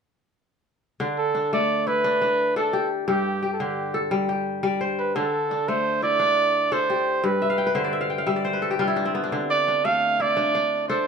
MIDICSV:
0, 0, Header, 1, 3, 480
1, 0, Start_track
1, 0, Tempo, 347423
1, 1376, Time_signature, 12, 3, 24, 8
1, 15298, End_track
2, 0, Start_track
2, 0, Title_t, "Trumpet"
2, 0, Program_c, 0, 56
2, 1628, Note_on_c, 0, 69, 87
2, 2067, Note_off_c, 0, 69, 0
2, 2116, Note_on_c, 0, 74, 85
2, 2592, Note_on_c, 0, 71, 91
2, 2612, Note_off_c, 0, 74, 0
2, 3540, Note_off_c, 0, 71, 0
2, 3556, Note_on_c, 0, 69, 78
2, 3990, Note_off_c, 0, 69, 0
2, 4278, Note_on_c, 0, 67, 78
2, 4843, Note_off_c, 0, 67, 0
2, 4878, Note_on_c, 0, 69, 48
2, 4989, Note_on_c, 0, 67, 67
2, 5009, Note_off_c, 0, 69, 0
2, 5518, Note_off_c, 0, 67, 0
2, 6889, Note_on_c, 0, 71, 67
2, 7122, Note_on_c, 0, 69, 73
2, 7143, Note_off_c, 0, 71, 0
2, 7854, Note_on_c, 0, 72, 85
2, 7875, Note_off_c, 0, 69, 0
2, 8329, Note_off_c, 0, 72, 0
2, 8337, Note_on_c, 0, 74, 102
2, 9301, Note_on_c, 0, 72, 84
2, 9322, Note_off_c, 0, 74, 0
2, 10019, Note_on_c, 0, 71, 73
2, 10040, Note_off_c, 0, 72, 0
2, 10972, Note_off_c, 0, 71, 0
2, 13128, Note_on_c, 0, 74, 93
2, 13608, Note_on_c, 0, 77, 92
2, 13629, Note_off_c, 0, 74, 0
2, 14115, Note_on_c, 0, 74, 91
2, 14136, Note_off_c, 0, 77, 0
2, 15028, Note_off_c, 0, 74, 0
2, 15037, Note_on_c, 0, 72, 73
2, 15298, Note_off_c, 0, 72, 0
2, 15298, End_track
3, 0, Start_track
3, 0, Title_t, "Kora"
3, 0, Program_c, 1, 46
3, 1380, Note_on_c, 1, 62, 61
3, 1381, Note_on_c, 1, 50, 69
3, 1854, Note_off_c, 1, 62, 0
3, 1860, Note_on_c, 1, 62, 55
3, 2111, Note_on_c, 1, 57, 72
3, 2581, Note_on_c, 1, 64, 50
3, 2817, Note_off_c, 1, 62, 0
3, 2822, Note_on_c, 1, 62, 73
3, 3056, Note_off_c, 1, 62, 0
3, 3062, Note_on_c, 1, 62, 64
3, 3535, Note_off_c, 1, 62, 0
3, 3540, Note_on_c, 1, 62, 72
3, 3544, Note_on_c, 1, 69, 61
3, 3775, Note_on_c, 1, 67, 61
3, 4245, Note_off_c, 1, 67, 0
3, 4251, Note_on_c, 1, 43, 70
3, 4251, Note_on_c, 1, 67, 57
3, 4319, Note_off_c, 1, 50, 0
3, 4726, Note_off_c, 1, 67, 0
3, 4732, Note_on_c, 1, 67, 53
3, 4746, Note_off_c, 1, 64, 0
3, 4870, Note_off_c, 1, 57, 0
3, 4974, Note_on_c, 1, 50, 60
3, 5365, Note_off_c, 1, 69, 0
3, 5445, Note_on_c, 1, 69, 57
3, 5679, Note_on_c, 1, 55, 75
3, 5860, Note_off_c, 1, 62, 0
3, 5919, Note_off_c, 1, 67, 0
3, 5925, Note_on_c, 1, 67, 58
3, 6382, Note_off_c, 1, 55, 0
3, 6397, Note_on_c, 1, 55, 68
3, 6399, Note_on_c, 1, 74, 63
3, 6641, Note_on_c, 1, 72, 57
3, 7108, Note_off_c, 1, 50, 0
3, 7124, Note_on_c, 1, 50, 76
3, 7130, Note_on_c, 1, 62, 54
3, 7194, Note_off_c, 1, 43, 0
3, 7194, Note_off_c, 1, 55, 0
3, 7266, Note_off_c, 1, 69, 0
3, 7607, Note_off_c, 1, 62, 0
3, 7613, Note_on_c, 1, 62, 52
3, 7853, Note_on_c, 1, 57, 63
3, 7876, Note_off_c, 1, 67, 0
3, 7929, Note_off_c, 1, 74, 0
3, 8282, Note_off_c, 1, 72, 0
3, 8321, Note_on_c, 1, 64, 53
3, 8553, Note_off_c, 1, 62, 0
3, 8559, Note_on_c, 1, 62, 70
3, 9275, Note_off_c, 1, 62, 0
3, 9281, Note_on_c, 1, 62, 73
3, 9284, Note_on_c, 1, 69, 56
3, 9530, Note_on_c, 1, 67, 60
3, 9997, Note_on_c, 1, 43, 70
3, 10073, Note_off_c, 1, 50, 0
3, 10248, Note_on_c, 1, 76, 57
3, 10357, Note_on_c, 1, 77, 65
3, 10440, Note_off_c, 1, 64, 0
3, 10471, Note_on_c, 1, 79, 60
3, 10591, Note_on_c, 1, 71, 65
3, 10612, Note_off_c, 1, 57, 0
3, 10705, Note_on_c, 1, 50, 71
3, 10710, Note_on_c, 1, 72, 51
3, 10836, Note_on_c, 1, 74, 59
3, 10947, Note_off_c, 1, 76, 0
3, 10953, Note_on_c, 1, 76, 60
3, 11036, Note_off_c, 1, 77, 0
3, 11062, Note_on_c, 1, 77, 61
3, 11104, Note_off_c, 1, 69, 0
3, 11182, Note_off_c, 1, 79, 0
3, 11188, Note_on_c, 1, 79, 55
3, 11299, Note_off_c, 1, 77, 0
3, 11305, Note_on_c, 1, 77, 59
3, 11388, Note_off_c, 1, 76, 0
3, 11419, Note_on_c, 1, 76, 60
3, 11420, Note_on_c, 1, 55, 70
3, 11481, Note_off_c, 1, 67, 0
3, 11546, Note_off_c, 1, 74, 0
3, 11552, Note_on_c, 1, 74, 52
3, 11601, Note_off_c, 1, 62, 0
3, 11663, Note_off_c, 1, 72, 0
3, 11669, Note_on_c, 1, 72, 66
3, 11752, Note_off_c, 1, 71, 0
3, 11790, Note_on_c, 1, 71, 56
3, 11909, Note_on_c, 1, 69, 64
3, 12028, Note_on_c, 1, 67, 67
3, 12131, Note_off_c, 1, 55, 0
3, 12146, Note_on_c, 1, 65, 61
3, 12147, Note_on_c, 1, 55, 71
3, 12229, Note_off_c, 1, 76, 0
3, 12263, Note_on_c, 1, 64, 62
3, 12345, Note_off_c, 1, 77, 0
3, 12384, Note_on_c, 1, 62, 68
3, 12475, Note_off_c, 1, 79, 0
3, 12508, Note_on_c, 1, 60, 61
3, 12591, Note_off_c, 1, 71, 0
3, 12637, Note_on_c, 1, 59, 60
3, 12720, Note_off_c, 1, 72, 0
3, 12754, Note_off_c, 1, 62, 0
3, 12760, Note_on_c, 1, 62, 60
3, 12864, Note_off_c, 1, 50, 0
3, 12876, Note_off_c, 1, 62, 0
3, 12880, Note_on_c, 1, 50, 67
3, 12881, Note_on_c, 1, 62, 57
3, 12957, Note_off_c, 1, 43, 0
3, 12957, Note_off_c, 1, 55, 0
3, 13082, Note_off_c, 1, 74, 0
3, 13367, Note_off_c, 1, 62, 0
3, 13373, Note_on_c, 1, 62, 58
3, 13605, Note_on_c, 1, 57, 70
3, 13729, Note_off_c, 1, 69, 0
3, 13979, Note_off_c, 1, 67, 0
3, 14085, Note_off_c, 1, 64, 0
3, 14090, Note_on_c, 1, 64, 53
3, 14173, Note_off_c, 1, 65, 0
3, 14317, Note_off_c, 1, 62, 0
3, 14323, Note_on_c, 1, 62, 74
3, 14569, Note_off_c, 1, 62, 0
3, 14575, Note_on_c, 1, 62, 63
3, 14995, Note_off_c, 1, 60, 0
3, 15047, Note_off_c, 1, 62, 0
3, 15052, Note_on_c, 1, 62, 72
3, 15053, Note_on_c, 1, 69, 57
3, 15212, Note_off_c, 1, 59, 0
3, 15298, Note_off_c, 1, 50, 0
3, 15298, Note_off_c, 1, 57, 0
3, 15298, Note_off_c, 1, 62, 0
3, 15298, Note_off_c, 1, 64, 0
3, 15298, Note_off_c, 1, 69, 0
3, 15298, End_track
0, 0, End_of_file